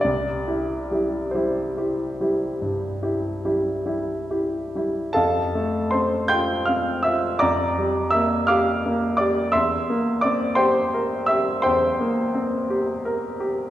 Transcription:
\new Staff \with { instrumentName = "Grand piano" } { \time 12/8 \key c \mixolydian \tempo 4. = 55 << { d''4. c''1 r8 | <a' f'' a''>4 <c'' c'''>8 <g'' c''' g'''>8 <f'' f'''>8 <e'' e'''>8 <d'' bes'' d'''>4 <e'' e'''>8 <f'' d''' f'''>4 <d'' d'''>8 | <e'' c''' e'''>4 <d'' d'''>8 <c'' g'' c'''>4 <e'' e'''>8 <c'' g'' c'''>2~ <c'' g'' c'''>8 r8 | } \\ { c,8 <e' g'>8 <g e' g'>8 <g e' g'>8 <e' g'>8 <g e' g'>8 g,8 <e' g'>8 <g e' g'>8 <g e' g'>8 <e' g'>8 <g e' g'>8 | f,8 a8 c'8 f'8 c'8 f'8 f,8 g8 bes8 g'8 bes8 g'8 | e,8 bes8 c'8 g'8 bes'8 g'8 e,8 bes8 c'8 g'8 bes'8 g'8 | } >> }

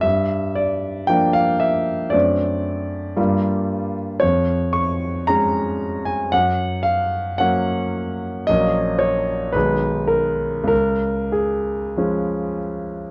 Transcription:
<<
  \new Staff \with { instrumentName = "Grand piano" } { \time 4/4 \key g \dorian \tempo 4 = 113 e''4 d''4 g''8 f''8 e''4 | d''2.~ d''8 r8 | \key fis \major cis''4 cis'''4 ais''4. gis''8 | fis''4 eis''4 fis''2 |
dis''4 cis''4 b'4 ais'4 | ais'4 gis'2 r4 | }
  \new Staff \with { instrumentName = "Grand piano" } { \clef bass \time 4/4 \key g \dorian g,2 <f bes d'>2 | <fis, a c' d'>2 <g, g bes f'>2 | \key fis \major eis,2 <gis cis'>2 | fis,2 <fis ais cis'>2 |
<ais,, fis ais cis'>2 <b,, dis gis dis'>2 | cis,2 <eis gis cis'>2 | }
>>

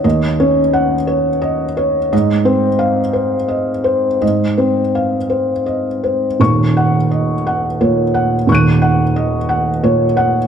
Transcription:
<<
  \new Staff \with { instrumentName = "Felt piano" } { \time 3/4 \key ees \dorian \tempo 4 = 86 << { r2. | r4 f''4 r4 | r2. | des'''4 r2 |
<des''' ges''' ees''''>2. | } \\ { <des'' ees''>8 des''8 ges''8 des''8 ees''8 des''8 | ees''8 c''4 c''8 ees''8 c''8 | ees''8 c''8 f''8 c''8 ees''8 c''8 | r8 ges''8 ees''8 ges''8 des''8 ges''8~ |
ges''8 ges''8 ees''8 ges''8 des''8 ges''8 | } >> }
  \new Staff \with { instrumentName = "Felt piano" } { \clef bass \time 3/4 \key ees \dorian ees,8 des'4 r4. | aes,8 c'4 r4. | aes,8 c'4 r4. | <ees,, ees,>2 bes,4 |
<ees,, ees,>2 bes,4 | }
>>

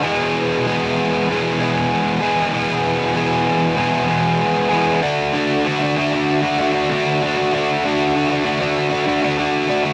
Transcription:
\new Staff \with { instrumentName = "Overdriven electric guitar" } { \time 4/4 \key d \lydian \tempo 4 = 96 <e, b, e gis b gis'>4 <e gis b gis'>4 <e, b, e gis b gis'>8 <e gis b gis'>4 <e gis b gis'>8 | <e, b, e gis b gis'>4 <e gis b gis'>4 <e, b, e gis b gis'>8 <e gis b gis'>4 <e gis b gis'>8 | <d a d' fis'>8 <d a d' fis'>8 <d a d' fis'>16 <a d' fis'>16 <d a d' fis'>16 <a d' fis'>8 <a d' fis'>16 <d a d' fis'>16 <a d' fis'>16 <d a d' fis'>8 <d a d' fis'>16 <a d' fis'>16 | <d a d' fis'>8 <d a d' fis'>8 <d a d' fis'>16 <a d' fis'>16 <d a d' fis'>16 <a d' fis'>8 <a d' fis'>16 <d a d' fis'>16 <a d' fis'>16 <d a d' fis'>8 <d a d' fis'>16 <a d' fis'>16 | }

